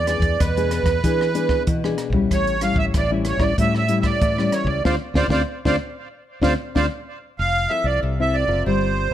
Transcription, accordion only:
0.08 D5
0.40 B4
2.33 C#5
2.63 F5
2.78 E5
2.97 D5
3.28 C#5
3.41 D5
3.60 E5
3.77 E5
4.00 E5
4.05 D5
4.53 C#5
4.67 D5
4.85 C5 D5 F5
5.16 C5 D5 F5
5.31 C5 D5 F5
5.67 C5 D5 F5
6.43 C5 D5 F5
6.76 C5 D5 F5
7.39 F5
7.69 E5
7.86 D5
8.21 E5
8.33 D5
8.67 C5

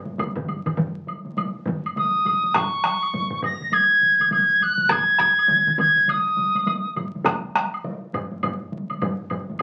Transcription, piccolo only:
1.97 D#6
2.55 C#6
3.44 A#6
3.73 G#6
4.32 G#6
4.63 F#6
4.92 G#6
5.80 G#6
6.10 D#6

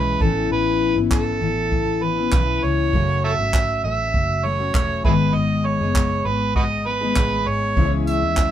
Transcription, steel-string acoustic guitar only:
Already playing: E3 G#3 C#4 E4
0.20 A2 E3 B3 C#4 E4
0.96 B3 C#4 E4
1.40 E3 B3 C#4 E4
2.01 E3 B3 C#4 E4
2.18 B3 C#4 E4
2.33 E3 B3 C#4 E4
2.93 F#2 C#3 F#3 A3 C#4 F#4
3.39 F#3 A3 C#4 F#4
3.84 F#3 A3 C#4 F#4
4.45 F#3 A3 C#4 F#4
4.59 F#3 A3 C#4 F#4
4.74 F#3 A3 C#4 F#4
5.06 G#2 D#3 G#3 B3 D#4 G#4
5.81 G#3 B3 D#4 G#4
6.26 G#3 B3 D#4 G#4
6.87 G#3 B3 D#4 G#4
7.01 G#3 B3 D#4 G#4
7.16 G#3 B3 D#4 G#4
7.76 C#3 E3 G#3 C#4 E4
8.21 G#3 C#4 E4

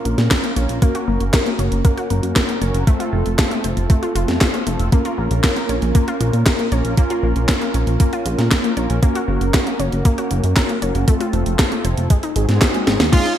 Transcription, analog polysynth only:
Already playing: A#3 C#4 F4 A#4
0.56 A#3 C#4 F4 A#4
0.82 A#3 C#4 F#4 A#4
2.62 A#3 C#4 F#4 A#4
2.87 A3 C4 F4 A4
4.67 A3 C4 F4 A4
4.92 A#3 C#4 F4 A#4
6.72 A#3 C#4 F4 A#4
6.98 A#3 C#4 F4 A#4
8.77 A#3 C#4 F4 A#4
9.03 A#3 C#4 F#4 A#4
10.82 A#3 C#4 F#4 A#4
11.08 A3 C4 F4 A4
12.36 C4 D#4 F#4 G#4
12.49 C4 D#4 F#4 G#4
13.13 C#4 D#4 F4 G#4

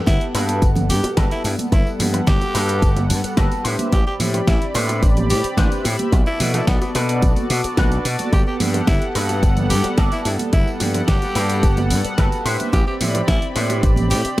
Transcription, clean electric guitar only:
0.07 muted clean electric guitar stroke
0.35 F#4 G4 A4 B4
1.04 muted clean electric guitar stroke
1.17 F#4 G4 A4 B4
1.72 muted clean electric guitar stroke
1.86 muted clean electric guitar stroke
2.13 muted clean electric guitar stroke
2.27 muted clean electric guitar stroke
2.54 F#4 G4 A4 B4
3.24 muted clean electric guitar stroke
3.37 F#4 G4 A4 B4
3.64 D4 G4 B4 C5
4.06 muted clean electric guitar stroke
4.34 muted clean electric guitar stroke
4.47 muted clean electric guitar stroke
4.74 D4 G4 B4 C5
5.44 muted clean electric guitar stroke
5.57 D4 G4 B4 C5
6.12 muted clean electric guitar stroke
6.26 muted clean electric guitar stroke
6.54 muted clean electric guitar stroke
6.68 muted clean electric guitar stroke
6.95 D4 F#4 A4 B4
7.64 muted clean electric guitar stroke
7.77 D4 F#4 A4 B4
8.33 muted clean electric guitar stroke
8.47 muted clean electric guitar stroke
8.74 muted clean electric guitar stroke
8.87 muted clean electric guitar stroke
9.15 F#4 G4 A4 B4
9.84 muted clean electric guitar stroke
9.98 F#4 G4 A4 D5
10.53 muted clean electric guitar stroke
10.67 muted clean electric guitar stroke
10.95 muted clean electric guitar stroke
11.08 muted clean electric guitar stroke
11.35 F#4 G4 A4 B4
12.05 muted clean electric guitar stroke
12.18 F#4 G4 A4 B4
12.45 D4 G4 B4 C5
12.87 muted clean electric guitar stroke
13.15 muted clean electric guitar stroke
13.28 muted clean electric guitar stroke
13.56 D4 G4 B4 C5
14.25 muted clean electric guitar stroke

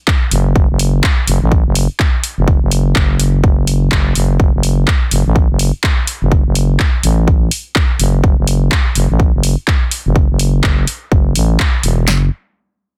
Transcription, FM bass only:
0.31 F#1
0.70 F#1
1.27 F#1
1.42 A1
1.66 F#1
2.38 F#1
2.62 F#1
4.16 F#1
4.54 F#1
5.11 F#1
5.26 A1
5.50 F#1
6.22 F#1
6.46 F#1
7.03 A1
7.99 F#1
8.38 F#1
8.96 F#1
9.10 A1
9.34 F#1
10.06 F#1
10.30 F#1
10.64 F#1
11.12 F#1
11.36 A1
11.83 E1
12.07 F#1

